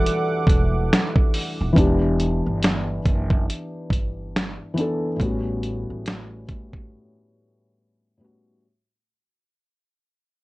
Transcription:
0.00 1.73 E3 medium
0.00 1.73 G3 medium
0.00 1.77 D4 medium
0.00 1.79 F#4 medium
0.00 1.78 G4 medium
0.00 0.24 A4 medium
0.00 1.78 D5 medium
0.00 1.73 E5 medium
0.00 1.73 F#5 medium
0.00 1.73 D6 medium
0.06 closed hi-hat loud
0.47 0.87 E1 medium
0.47 kick medium
0.47 closed hi-hat medium
0.93 snare loud
0.93 closed hi-hat medium
1.16 kick medium
1.34 open hi-hat medium
1.61 1.75 D#1 medium
1.73 2.42 E1 loud
1.73 2.98 E3 medium
1.73 2.99 B3 medium
1.73 kick loud
1.77 3.00 D4 medium
1.77 3.01 G4 medium
1.77 closed hi-hat medium
2.20 closed hi-hat medium
2.46 3.01 G1 medium
2.63 snare loud
2.63 closed hi-hat medium
3.06 3.45 F#1 medium
3.06 kick medium
3.06 closed hi-hat soft
3.30 kick medium
3.50 closed hi-hat medium
3.90 4.56 G1 medium
3.90 kick medium
3.90 closed hi-hat medium
4.36 snare loud
4.36 closed hi-hat medium
4.74 5.09 E3 medium
4.74 5.10 B3 medium
4.74 closed hi-hat medium
4.78 5.11 D4 medium
4.78 5.12 A4 medium
5.16 5.85 A1 loud
5.16 6.41 A2 medium
5.16 6.41 G3 medium
5.16 6.42 B3 medium
5.16 kick loud
5.21 6.43 C#4 medium
5.21 6.44 F#4 medium
5.21 closed hi-hat medium
5.63 closed hi-hat medium
5.90 6.44 A1 medium
6.06 snare loud
6.06 closed hi-hat medium
6.49 6.88 G1 medium
6.49 kick medium
6.49 closed hi-hat soft
6.73 kick medium
8.17 8.52 A2 medium
8.17 8.53 G3 medium
8.17 8.53 B3 medium
8.22 8.54 C#4 medium
8.22 8.55 F#4 medium

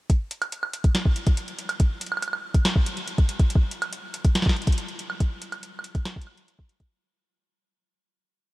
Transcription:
0.10 kick loud
0.10 closed hi-hat medium
0.31 closed hi-hat medium
0.42 closed hi-hat medium
0.42 high woodblock medium
0.52 closed hi-hat medium
0.63 high woodblock medium
0.73 closed hi-hat medium
0.84 kick loud
0.84 closed hi-hat medium
0.95 snare loud
0.95 closed hi-hat medium
1.05 kick loud
1.16 closed hi-hat medium
1.27 kick loud
1.27 closed hi-hat medium
1.37 closed hi-hat medium
1.48 closed hi-hat soft
1.59 closed hi-hat medium
1.69 closed hi-hat medium
1.69 high woodblock medium
1.80 kick loud
1.80 closed hi-hat medium
2.01 closed hi-hat medium
2.06 closed hi-hat medium
2.12 high woodblock medium
2.17 high woodblock soft
2.22 closed hi-hat medium
2.22 high woodblock soft
2.28 high woodblock soft
2.33 high woodblock medium
2.54 kick loud
2.54 closed hi-hat medium
2.65 snare loud
2.65 closed hi-hat medium
2.76 kick loud
2.86 closed hi-hat medium
2.97 closed hi-hat medium
3.08 closed hi-hat medium
3.18 kick loud
3.18 closed hi-hat soft
3.29 closed hi-hat medium
3.39 kick loud
3.39 closed hi-hat medium
3.50 closed hi-hat medium
3.55 kick loud
3.71 closed hi-hat medium
3.82 closed hi-hat medium
3.82 high woodblock medium
3.93 closed hi-hat medium
4.14 closed hi-hat medium
4.25 kick loud
4.25 closed hi-hat medium
4.35 snare loud
4.35 closed hi-hat medium
4.42 kick loud
4.42 snare medium
4.49 snare medium
4.56 closed hi-hat soft
4.62 closed hi-hat soft
4.67 kick loud
4.67 closed hi-hat medium
4.72 closed hi-hat medium
4.78 closed hi-hat medium
4.88 closed hi-hat soft
4.99 closed hi-hat medium
5.10 high woodblock medium
5.20 kick loud
5.20 closed hi-hat medium
5.42 closed hi-hat medium
5.52 closed hi-hat medium
5.52 high woodblock medium
5.63 closed hi-hat medium
5.79 high woodblock medium
5.84 closed hi-hat medium
5.95 kick loud
5.95 closed hi-hat medium
6.05 snare loud
6.05 closed hi-hat medium
6.16 kick loud
6.21 closed hi-hat medium
6.27 high woodblock soft
6.37 closed hi-hat medium
6.48 closed hi-hat medium
6.59 kick loud
6.69 closed hi-hat medium
6.80 kick loud
6.80 closed hi-hat medium

